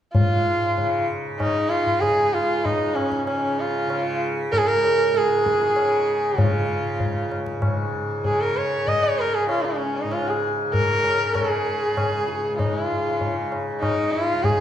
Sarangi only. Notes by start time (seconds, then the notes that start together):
0.14 F4
1.40 D#4
1.70 F4
2.00 G#4
2.34 F4
2.65 D#4
2.95 C#4
3.27 C#4
3.60 F4
4.52 A#4
4.58 G#4
4.68 A#4
5.17 G#4
6.41 F4
8.25 G#4
8.41 A#4
8.57 C#5
8.87 D#5
9.04 C#5
9.19 A#4
9.34 G#4
9.50 F4
9.65 C#4
9.97 D#4
10.13 F4
10.29 G#4
10.74 A#4
11.34 A4
11.49 G#4
12.59 D#4
12.74 E4
12.85 F4
13.81 D#4
14.12 F4
14.44 G#4